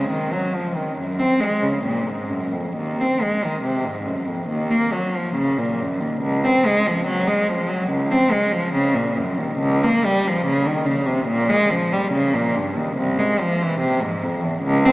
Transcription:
0.00 0.12 C#3 soft
0.10 0.32 D#3 soft
0.32 0.55 F#3 soft
0.53 0.76 F3 soft
0.76 0.98 D#3 soft
0.97 1.19 F#2 soft
1.19 1.42 C4 soft
1.40 1.63 G#3 soft
1.62 1.85 C#3 soft
1.84 2.07 A#2 soft
2.06 2.30 G#2 soft
2.30 2.53 F#2 soft
2.53 2.76 F2 soft
2.76 2.99 D#2 medium
3.00 3.22 C4 soft
3.22 3.43 G#3 soft
3.45 3.65 D#3 soft
3.63 3.85 C3 soft
3.85 4.07 G#2 soft
4.06 4.28 F#2 soft
4.27 4.49 F2 soft
4.48 4.70 D#2 medium
4.70 4.92 A#3 medium
4.92 5.14 F#3 soft
5.15 5.36 F3 soft
5.35 5.56 C#3 soft
5.58 5.79 A#2 soft
5.80 6.01 F#2 soft
6.00 6.22 D#2 soft
6.21 6.42 C#2 medium
6.44 6.65 C4 medium
6.66 6.86 G#3 medium
6.87 7.07 F3 soft
7.06 7.27 F#3 medium
7.27 7.48 G#3 soft
7.49 7.69 F3 soft
7.69 7.90 F#3 soft
7.90 8.10 C#2 soft
8.11 8.32 C4 medium
8.31 8.53 G#3 soft
8.52 8.74 F3 soft
8.74 8.95 C#3 medium
8.95 9.17 A#2 soft
9.16 9.38 F#2 soft
9.38 9.61 D#2 soft
9.59 9.82 C#2 medium
9.83 10.05 A#3 medium
10.05 10.26 G3 medium
10.27 10.47 F3 medium
10.46 10.67 C#3 medium
10.66 10.88 D#3 medium
10.86 11.08 C#3 medium
11.06 11.28 C3 soft
11.27 11.49 A#2 medium
11.49 11.71 G#3 medium
11.70 11.92 F3 medium
11.92 12.13 G3 soft
12.12 12.33 C#3 medium
12.34 12.55 A#2 medium
12.54 12.76 G2 medium
12.76 12.97 D#2 soft
12.98 13.18 C2 medium
13.19 13.40 G#3 medium
13.41 13.61 F3 medium
13.62 13.82 E3 medium
13.80 14.01 C3 medium
14.02 14.23 G#2 soft
14.23 14.43 F2 soft
14.44 14.64 E2 soft
14.63 14.84 C#2 medium
14.85 14.92 C4 medium

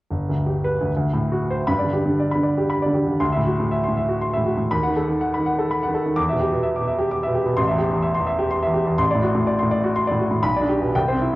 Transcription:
0.11 0.86 G1 soft
0.30 0.57 D2 soft
0.46 0.74 G4 soft
0.64 0.89 B4 soft
0.81 0.89 D2 soft
0.97 1.65 D2 soft
1.13 1.43 A2 soft
1.32 1.61 F#4 soft
1.50 1.68 C5 soft
1.67 3.16 G2 soft
1.67 1.88 B5 medium
1.79 2.00 D5 soft
1.84 2.04 D3 soft
1.93 2.14 G4 soft
2.06 2.26 D3 soft
2.19 2.40 D5 soft
2.31 2.52 B5 soft
2.35 2.63 D3 soft
2.43 2.64 D5 soft
2.58 2.78 G4 soft
2.70 2.90 B5 soft
2.82 3.02 D5 soft
2.86 3.05 D3 soft
2.94 3.15 G4 soft
3.06 3.19 D3 soft
3.20 4.68 D2 soft
3.20 3.40 C6 medium
3.32 3.53 E5 soft
3.37 3.58 A2 soft
3.46 3.66 F#4 soft
3.60 3.79 A2 soft
3.71 3.91 E5 soft
3.83 4.04 C6 soft
3.88 4.15 A2 soft
3.97 4.17 E5 soft
4.08 4.29 F#4 soft
4.21 4.42 C6 soft
4.33 4.56 A2 soft
4.33 4.54 E5 soft
4.46 4.67 F#4 soft
4.57 4.71 A2 soft
4.71 6.14 D#2 soft
4.71 4.91 B5 medium
4.83 5.04 F#5 soft
4.87 5.07 D#3 soft
4.96 5.16 A4 soft
5.09 5.29 D#3 soft
5.21 5.41 F#5 soft
5.34 5.64 D#3 soft
5.34 5.54 B5 soft
5.46 5.66 F#5 soft
5.59 5.78 A4 soft
5.71 5.90 B5 soft
5.83 6.02 F#5 soft
5.87 6.04 D#3 soft
5.94 6.13 A4 soft
6.05 6.18 D#3 soft
6.16 7.53 E2 medium
6.16 6.36 D6 medium
6.29 6.50 B2 soft
6.29 6.48 E5 soft
6.40 6.60 G4 soft
6.52 6.72 B2 soft
6.63 6.83 E5 soft
6.76 6.95 D6 soft
6.81 7.06 B2 soft
6.87 7.07 E5 soft
6.98 7.18 G4 soft
7.11 7.30 D6 soft
7.23 7.44 B2 soft
7.23 7.42 E5 soft
7.35 7.53 G4 soft
7.46 7.58 B2 soft
7.57 8.95 A1 medium
7.57 7.76 C6 medium
7.68 7.91 E2 soft
7.68 7.87 E5 soft
7.78 7.99 G4 soft
7.92 8.12 E2 soft
8.02 8.23 E5 soft
8.15 8.35 C6 soft
8.20 8.45 E2 soft
8.27 8.47 E5 soft
8.39 8.58 G4 medium
8.51 8.70 C6 medium
8.63 8.85 E2 soft
8.63 8.83 E5 medium
8.74 8.94 G4 soft
8.87 8.99 E2 soft
8.98 10.39 A1 medium
8.98 9.18 C6 medium
9.11 9.31 D5 soft
9.15 9.34 A2 soft
9.22 9.42 F#4 soft
9.35 9.55 A2 soft
9.47 9.67 D5 soft
9.59 9.89 A2 soft
9.59 9.79 C6 soft
9.71 9.91 D5 soft
9.84 10.03 F#4 soft
9.96 10.15 C6 medium
10.07 10.27 D5 soft
10.11 10.29 A2 soft
10.19 10.39 F#4 soft
10.31 10.43 A2 soft
10.43 10.92 B1 medium
10.43 10.63 B5 medium
10.56 10.76 D5 soft
10.61 10.88 D4 soft
10.69 10.89 G4 soft
10.81 10.94 B2 soft
10.95 11.35 C2 soft
10.95 11.15 G5 medium
11.08 11.28 C5 soft
11.12 11.35 C4 soft
11.21 11.35 E4 soft

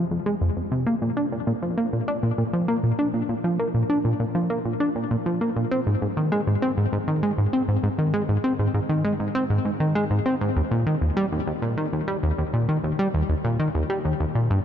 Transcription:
0.11 0.20 F2 medium
0.26 0.35 G#3 medium
0.41 0.50 F2 medium
0.56 0.62 F2 medium
0.72 0.85 C3 medium
0.86 0.96 A#3 medium
1.02 1.11 A#2 medium
1.17 1.26 D4 medium
1.32 1.41 A#2 medium
1.47 1.53 A#2 medium
1.62 1.76 F3 medium
1.78 1.87 A#3 medium
1.93 2.02 A#2 medium
2.08 2.17 D4 medium
2.23 2.32 A#2 medium
2.38 2.44 A#2 medium
2.53 2.67 F3 medium
2.68 2.78 A#3 medium
2.83 2.93 A#2 medium
2.99 3.08 D4 medium
3.14 3.23 A#2 medium
3.29 3.35 A#2 medium
3.44 3.58 F3 medium
3.59 3.69 A#3 medium
3.74 3.84 A#2 medium
3.90 3.99 D4 medium
4.05 4.14 A#2 medium
4.20 4.25 A#2 medium
4.35 4.49 F3 medium
4.50 4.59 A#3 medium
4.65 4.74 A#2 medium
4.80 4.90 D4 medium
4.96 5.05 A#2 medium
5.11 5.16 A#2 medium
5.26 5.40 F3 medium
5.41 5.50 A#3 medium
5.56 5.65 A#2 medium
5.71 5.81 C4 medium
5.87 5.96 G#2 medium
6.02 6.07 G#2 medium
6.17 6.31 D#3 medium
6.32 6.41 G#3 medium
6.47 6.56 G#2 medium
6.62 6.72 C4 medium
6.77 6.87 G#2 medium
6.93 6.98 G#2 medium
7.08 7.22 D#3 medium
7.23 7.32 G#3 medium
7.38 7.47 G#2 medium
7.53 7.62 C4 medium
7.68 7.78 G#2 medium
7.83 7.89 G#2 medium
7.98 8.12 D#3 medium
8.14 8.23 G#3 medium
8.29 8.38 G#2 medium
8.44 8.53 C4 medium
8.59 8.69 G#2 medium
8.74 8.80 G#2 medium
8.89 9.03 D#3 medium
9.04 9.14 G#3 medium
9.20 9.29 G#2 medium
9.35 9.44 C4 medium
9.50 9.59 G#2 medium
9.65 9.71 G#2 medium
9.80 9.94 D#3 medium
9.95 10.05 G#3 medium
10.11 10.20 G#2 medium
10.26 10.35 C4 medium
10.41 10.50 G#2 medium
10.56 10.62 D#2 medium
10.71 10.85 A#2 medium
10.86 10.96 D#3 medium
11.01 11.11 D#2 medium
11.17 11.26 G3 medium
11.32 11.41 D#2 medium
11.47 11.53 D#2 medium
11.62 11.76 A#2 medium
11.77 11.87 D#3 medium
11.93 12.02 D#2 medium
12.08 12.17 G3 medium
12.23 12.32 D#2 medium
12.38 12.44 D#2 medium
12.53 12.67 A#2 medium
12.69 12.78 D#3 medium
12.84 12.93 D#2 medium
12.99 13.08 G3 medium
13.14 13.23 D#2 medium
13.29 13.35 D#2 medium
13.44 13.58 A#2 medium
13.59 13.69 D#3 medium
13.75 13.84 D#2 medium
13.90 13.99 G3 medium
14.05 14.14 D#2 medium
14.20 14.26 D#2 medium
14.35 14.49 A#2 medium
14.50 14.60 G2 loud

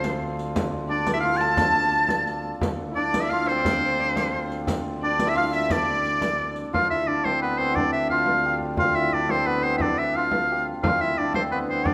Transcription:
0.00 2.62 D2 medium
0.00 3.35 C4 medium
0.00 0.89 D4 medium
0.00 1.23 F4 medium
0.00 0.33 C5 medium
0.00 0.37 C5 medium
0.00 riq medium
0.04 frame drum medium
0.21 frame drum soft
0.39 riq soft
0.56 riq medium
0.56 frame drum medium
0.89 2.96 D4 medium
0.89 1.24 D5 medium
0.89 1.13 D5 medium
1.06 riq medium
1.06 frame drum medium
1.14 1.30 E4 medium
1.14 1.18 E5 medium
1.20 2.97 F4 medium
1.20 1.39 F5 medium
1.20 1.43 F5 medium
1.20 frame drum soft
1.37 2.43 A5 loud
1.37 riq soft
1.41 4.34 A4 medium
1.41 2.45 A5 medium
1.57 riq medium
1.57 frame drum medium
1.75 frame drum soft
1.93 frame drum soft
2.09 riq soft
2.09 frame drum medium
2.27 riq soft
2.27 frame drum soft
2.61 6.71 D2 medium
2.61 riq medium
2.61 frame drum medium
2.91 3.22 E4 medium
2.96 5.03 D4 medium
2.96 3.32 D5 medium
2.96 3.23 D5 medium
3.14 riq medium
3.14 frame drum medium
3.22 3.38 E4 medium
3.22 3.31 E5 medium
3.29 5.33 F4 medium
3.29 3.50 F5 loud
3.29 3.48 F5 medium
3.29 frame drum soft
3.48 7.26 C4 medium
3.48 4.51 C5 loud
3.48 3.58 C5 medium
3.48 riq soft
3.57 3.64 D5 medium
3.63 3.72 C5 medium
3.63 riq medium
3.63 frame drum medium
3.71 3.80 D5 medium
3.78 3.87 C5 medium
3.85 3.93 D5 medium
3.92 4.01 C5 medium
4.00 4.09 D5 medium
4.07 4.17 C5 medium
4.16 4.26 D5 medium
4.16 riq soft
4.16 frame drum medium
4.24 4.52 C5 medium
4.34 frame drum soft
4.52 riq soft
4.67 riq medium
4.67 frame drum medium
5.03 5.68 D4 medium
5.03 5.28 D5 medium
5.03 5.31 D5 medium
5.19 riq medium
5.19 frame drum medium
5.27 5.41 E4 medium
5.27 5.38 E5 medium
5.27 5.37 E5 medium
5.35 5.57 F4 medium
5.35 5.54 F5 medium
5.35 5.45 F5 loud
5.35 frame drum soft
5.51 6.79 E4 medium
5.51 5.71 E5 medium
5.51 riq soft
5.56 5.73 E5 loud
5.68 7.07 D4 medium
5.68 6.53 D5 medium
5.68 6.57 D5 loud
5.68 riq medium
5.68 frame drum medium
6.05 riq soft
6.22 riq soft
6.22 frame drum medium
6.40 frame drum soft
6.56 riq soft
6.71 10.83 D2 medium
6.71 6.98 F4 medium
6.71 6.90 F5 loud
6.71 frame drum medium
6.90 7.72 E4 medium
6.90 7.09 E5 medium
6.90 frame drum soft
7.08 7.77 D4 medium
7.08 7.26 D5 medium
7.08 frame drum soft
7.25 7.48 C4 medium
7.25 7.41 C5 medium
7.25 frame drum medium
7.42 7.66 B3 medium
7.42 7.60 B4 medium
7.42 frame drum soft
7.58 9.30 C4 medium
7.58 7.77 C5 medium
7.58 frame drum soft
7.72 8.17 E4 medium
7.72 7.92 D5 medium
7.76 9.14 D4 medium
7.76 frame drum medium
7.93 8.09 E5 medium
7.93 frame drum soft
8.09 8.77 F4 medium
8.09 8.58 F5 medium
8.09 frame drum soft
8.26 frame drum medium
8.43 10.51 G4 medium
8.43 frame drum soft
8.61 frame drum soft
8.77 9.02 F4 medium
8.77 8.97 F5 loud
8.77 frame drum medium
8.95 9.78 E4 medium
8.95 9.15 E5 medium
8.95 frame drum soft
9.12 9.81 D4 medium
9.12 9.32 D5 medium
9.12 frame drum soft
9.29 9.52 C4 medium
9.29 9.48 C5 medium
9.29 frame drum medium
9.46 9.70 B3 medium
9.46 9.65 B4 medium
9.46 frame drum soft
9.63 11.36 C4 medium
9.63 9.76 C5 medium
9.63 frame drum soft
9.78 9.98 E4 medium
9.78 10.00 D5 medium
9.78 9.83 E5 medium
9.78 frame drum medium
9.82 11.18 D4 medium
9.98 10.23 E4 medium
9.98 10.17 E5 medium
10.16 10.85 F4 medium
10.16 10.67 F5 medium
10.32 frame drum medium
10.52 11.94 G4 medium
10.83 11.94 D2 medium
10.83 11.09 F4 medium
10.83 11.03 F5 medium
10.83 frame drum medium
11.01 11.94 E4 medium
11.01 11.19 E5 medium
11.01 frame drum soft
11.18 11.86 D4 medium
11.18 11.35 D5 medium
11.18 frame drum soft
11.34 11.58 C4 medium
11.34 11.43 C5 medium
11.34 frame drum medium
11.51 11.75 B3 medium
11.51 11.59 B4 medium
11.51 frame drum soft
11.69 11.94 C4 medium
11.69 11.88 C5 medium
11.69 frame drum soft
11.85 11.94 D4 medium
11.85 11.94 D5 medium
11.85 frame drum medium

